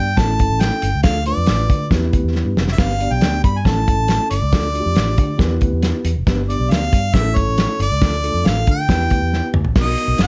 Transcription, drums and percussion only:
0.17 kick medium
0.17 snare loud
0.17 closed hi-hat medium
0.39 kick medium
0.39 closed hi-hat medium
0.60 snare medium
0.60 closed hi-hat medium
0.82 closed hi-hat medium
1.03 kick loud
1.03 snare loud
1.03 closed hi-hat medium
1.26 closed hi-hat medium
1.46 snare loud
1.46 closed hi-hat medium
1.70 kick medium
1.70 closed hi-hat medium
1.91 kick medium
1.91 snare loud
1.91 closed hi-hat medium
2.13 kick medium
2.13 closed hi-hat medium
2.35 snare soft
2.57 snare medium
2.68 snare medium
2.78 kick loud
2.78 snare loud
2.78 splash medium
3.00 closed hi-hat soft
3.21 snare loud
3.21 closed hi-hat medium
3.44 kick medium
3.44 closed hi-hat medium
3.65 kick loud
3.65 snare loud
3.65 closed hi-hat medium
3.88 kick medium
3.88 closed hi-hat medium
4.08 snare medium
4.08 closed hi-hat medium
4.31 closed hi-hat medium
4.53 kick loud
4.53 snare loud
4.53 closed hi-hat medium
4.75 closed hi-hat soft
4.96 snare loud
4.96 closed hi-hat medium
5.18 kick medium
5.18 closed hi-hat medium
5.39 kick medium
5.39 snare medium
5.39 closed hi-hat medium
5.61 kick medium
5.61 closed hi-hat medium
5.83 snare medium
5.83 closed hi-hat medium
6.05 closed hi-hat medium
6.27 kick loud
6.27 snare loud
6.27 closed hi-hat medium
6.50 closed hi-hat soft
6.71 snare loud
6.71 closed hi-hat medium
6.93 kick medium
6.93 closed hi-hat medium
7.14 kick medium
7.14 snare loud
7.14 closed hi-hat medium
7.36 kick medium
7.36 closed hi-hat medium
7.58 snare medium
7.58 closed hi-hat medium
7.80 closed hi-hat medium
8.02 kick loud
8.02 snare loud
8.02 closed hi-hat medium
8.24 closed hi-hat medium
8.45 snare loud
8.45 closed hi-hat medium
8.67 kick medium
8.67 closed hi-hat medium
8.89 kick medium
8.89 snare loud
8.89 closed hi-hat medium
9.10 kick medium
9.10 closed hi-hat medium
9.33 snare soft
9.54 mid tom loud
9.65 floor tom medium
9.75 kick loud
9.75 snare loud
9.75 crash medium
9.98 closed hi-hat soft
10.18 snare loud
10.18 closed hi-hat medium

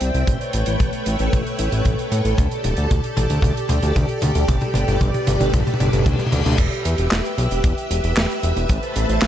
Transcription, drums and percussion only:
0.01 closed hi-hat medium
0.14 closed hi-hat medium
0.27 kick medium
0.27 closed hi-hat medium
0.27 mid tom medium
0.41 closed hi-hat soft
0.53 closed hi-hat loud
0.66 closed hi-hat medium
0.80 kick loud
0.80 closed hi-hat medium
0.80 mid tom medium
0.93 closed hi-hat soft
1.06 closed hi-hat medium
1.19 closed hi-hat medium
1.33 kick medium
1.33 closed hi-hat medium
1.33 mid tom medium
1.47 closed hi-hat soft
1.59 closed hi-hat medium
1.72 closed hi-hat medium
1.85 kick loud
1.85 closed hi-hat medium
1.85 mid tom medium
1.99 closed hi-hat soft
2.12 closed hi-hat loud
2.25 closed hi-hat medium
2.38 kick medium
2.38 closed hi-hat medium
2.38 mid tom medium
2.51 closed hi-hat soft
2.64 closed hi-hat medium
2.64 mid tom medium
2.77 closed hi-hat medium
2.91 kick medium
2.91 closed hi-hat medium
2.91 mid tom medium
3.04 closed hi-hat soft
3.17 closed hi-hat medium
3.17 mid tom medium
3.30 closed hi-hat medium
3.42 kick medium
3.42 closed hi-hat medium
3.42 mid tom medium
3.57 closed hi-hat soft
3.69 closed hi-hat loud
3.69 mid tom medium
3.83 closed hi-hat medium
3.96 kick medium
3.96 closed hi-hat medium
3.96 mid tom medium
4.09 closed hi-hat soft
4.22 closed hi-hat medium
4.22 mid tom medium
4.35 closed hi-hat medium
4.48 kick medium
4.48 closed hi-hat medium
4.48 mid tom medium
4.61 closed hi-hat soft
4.61 mid tom medium
4.74 closed hi-hat medium
4.74 mid tom medium
4.88 closed hi-hat medium
4.88 mid tom medium
5.01 kick medium
5.01 closed hi-hat medium
5.01 mid tom medium
5.14 closed hi-hat soft
5.14 mid tom medium
5.27 closed hi-hat loud
5.27 mid tom loud
5.40 closed hi-hat medium
5.40 mid tom medium
5.54 kick loud
5.54 closed hi-hat medium
5.54 mid tom medium
5.60 mid tom medium
5.67 closed hi-hat soft
5.67 mid tom medium
5.74 mid tom medium
5.80 closed hi-hat medium
5.80 mid tom loud
5.86 mid tom medium
5.93 closed hi-hat medium
5.93 mid tom loud
5.99 mid tom medium
6.06 kick loud
6.06 closed hi-hat medium
6.06 mid tom loud
6.13 mid tom medium
6.19 closed hi-hat soft
6.19 mid tom loud
6.26 mid tom medium
6.32 closed hi-hat loud
6.32 mid tom loud
6.39 mid tom medium
6.46 closed hi-hat medium
6.46 mid tom loud
6.52 mid tom medium
6.58 kick loud
6.58 closed hi-hat medium
6.58 crash loud
6.72 closed hi-hat soft
6.85 closed hi-hat loud
6.98 closed hi-hat medium
7.11 snare loud
7.11 clap loud
7.11 closed hi-hat medium
7.25 closed hi-hat soft
7.38 closed hi-hat loud
7.51 closed hi-hat medium
7.64 kick loud
7.64 closed hi-hat medium
7.78 closed hi-hat soft
7.91 closed hi-hat loud
8.04 closed hi-hat medium
8.17 snare loud
8.17 clap loud
8.17 closed hi-hat medium
8.31 closed hi-hat soft
8.43 closed hi-hat loud
8.57 closed hi-hat medium
8.69 kick loud
8.69 closed hi-hat medium
8.83 closed hi-hat soft
8.96 closed hi-hat loud
9.09 closed hi-hat medium
9.22 snare loud
9.22 clap medium
9.22 closed hi-hat medium

